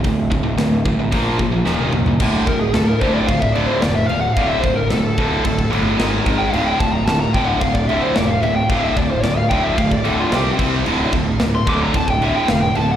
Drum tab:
CC |----------------|x-x-x-x-x-x-x-x-|x-x-x-x-x-x-x-x-|x-x-x-x-x-x-x-x-|
HH |o---o---o-------|----------------|----------------|----------------|
SD |----o-------o---|----o-------o---|----o-------o---|----o-------o---|
T1 |-------------o--|----------------|----------------|----------------|
T2 |--------------o-|----------------|----------------|----------------|
FT |---------------o|----------------|----------------|----------------|
BD |o-o---o-o-o-----|o-o---o-oo------|o-o---o-oo----o-|--o---o-oo------|

CC |x-x-x-x-x-x-x-x-|x-x-x-x-x-x-x-x-|
HH |----------------|----------------|
SD |----o-------o---|----o-------o---|
T1 |----------------|----------------|
T2 |----------------|----------------|
FT |----------------|----------------|
BD |o-o---o-oo----o-|--o---o-oo------|